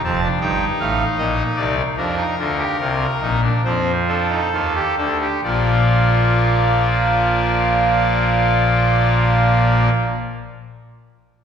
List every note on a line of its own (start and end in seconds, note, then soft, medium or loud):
0.04 0.27 F1 medium
0.04 0.27 F2 medium
0.04 0.20 C4 loud
0.04 0.27 A5 medium
0.23 0.39 D4 medium
0.41 0.65 G1 medium
0.41 0.65 G2 medium
0.41 1.76 D#4 medium
0.41 0.65 G5 loud
0.79 1.04 A1 medium
0.79 1.04 A2 medium
0.79 1.04 F5 loud
1.18 1.43 A#1 medium
1.18 1.43 A#2 medium
1.18 1.43 D#5 loud
1.56 1.82 C2 medium
1.56 1.82 C3 medium
1.56 1.82 D5 loud
1.97 2.22 F2 medium
1.97 2.23 F3 medium
1.97 2.15 D4 medium
1.97 3.41 A#4 medium
2.18 2.35 D#4 medium
2.38 2.64 D2 medium
2.38 2.64 D3 medium
2.38 2.56 F4 medium
2.59 2.77 G4 medium
2.80 3.06 C2 medium
2.80 3.06 C3 medium
2.80 3.06 F4 medium
3.22 3.48 A#1 medium
3.22 3.48 A#2 medium
3.22 3.40 D#4 medium
3.42 3.61 D4 medium
3.65 4.40 F2 medium
3.65 4.40 F3 medium
3.65 3.92 C4 medium
3.65 3.92 C5 medium
4.08 4.27 D4 medium
4.08 4.96 A4 medium
4.30 4.49 D#4 medium
4.52 4.81 D#2 medium
4.52 4.80 D#3 medium
4.52 4.72 F4 medium
4.75 4.95 G4 medium
4.98 5.26 D2 medium
4.98 5.26 D3 medium
4.98 5.17 A4 medium
5.21 5.40 G4 medium
5.44 9.89 A#1 medium
5.44 9.89 A#2 medium
5.44 9.91 F3 medium
5.44 9.91 A#3 medium
5.44 9.89 F4 medium
5.44 9.89 D5 medium